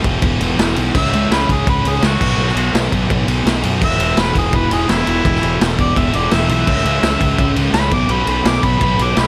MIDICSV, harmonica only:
0, 0, Header, 1, 2, 480
1, 0, Start_track
1, 0, Key_signature, 4, "major"
1, 0, Tempo, 357356
1, 1280, Time_signature, 4, 2, 24, 8
1, 12453, End_track
2, 0, Start_track
2, 0, Title_t, "Harmonica"
2, 0, Program_c, 0, 22
2, 1316, Note_on_c, 0, 76, 107
2, 1761, Note_off_c, 0, 76, 0
2, 1769, Note_on_c, 0, 71, 96
2, 2031, Note_on_c, 0, 68, 88
2, 2051, Note_off_c, 0, 71, 0
2, 2251, Note_off_c, 0, 68, 0
2, 2274, Note_on_c, 0, 71, 104
2, 2530, Note_on_c, 0, 68, 97
2, 2551, Note_off_c, 0, 71, 0
2, 2742, Note_off_c, 0, 68, 0
2, 2767, Note_on_c, 0, 66, 120
2, 3680, Note_off_c, 0, 66, 0
2, 5169, Note_on_c, 0, 76, 118
2, 5630, Note_on_c, 0, 71, 107
2, 5650, Note_off_c, 0, 76, 0
2, 5851, Note_off_c, 0, 71, 0
2, 5883, Note_on_c, 0, 68, 97
2, 6116, Note_on_c, 0, 71, 109
2, 6136, Note_off_c, 0, 68, 0
2, 6334, Note_off_c, 0, 71, 0
2, 6344, Note_on_c, 0, 68, 98
2, 6579, Note_on_c, 0, 64, 116
2, 6599, Note_off_c, 0, 68, 0
2, 7502, Note_off_c, 0, 64, 0
2, 7787, Note_on_c, 0, 74, 117
2, 8008, Note_off_c, 0, 74, 0
2, 8021, Note_on_c, 0, 76, 99
2, 8269, Note_on_c, 0, 74, 102
2, 8290, Note_off_c, 0, 76, 0
2, 8481, Note_off_c, 0, 74, 0
2, 8490, Note_on_c, 0, 76, 104
2, 8718, Note_off_c, 0, 76, 0
2, 8738, Note_on_c, 0, 76, 106
2, 10124, Note_off_c, 0, 76, 0
2, 10394, Note_on_c, 0, 83, 125
2, 10628, Note_off_c, 0, 83, 0
2, 10652, Note_on_c, 0, 86, 99
2, 10901, Note_on_c, 0, 83, 93
2, 10921, Note_off_c, 0, 86, 0
2, 11122, Note_off_c, 0, 83, 0
2, 11135, Note_on_c, 0, 83, 89
2, 11381, Note_on_c, 0, 86, 106
2, 11401, Note_off_c, 0, 83, 0
2, 11614, Note_on_c, 0, 83, 100
2, 11634, Note_off_c, 0, 86, 0
2, 11838, Note_off_c, 0, 83, 0
2, 11848, Note_on_c, 0, 83, 117
2, 12123, Note_on_c, 0, 86, 97
2, 12143, Note_off_c, 0, 83, 0
2, 12352, Note_on_c, 0, 83, 101
2, 12372, Note_off_c, 0, 86, 0
2, 12453, Note_off_c, 0, 83, 0
2, 12453, End_track
0, 0, End_of_file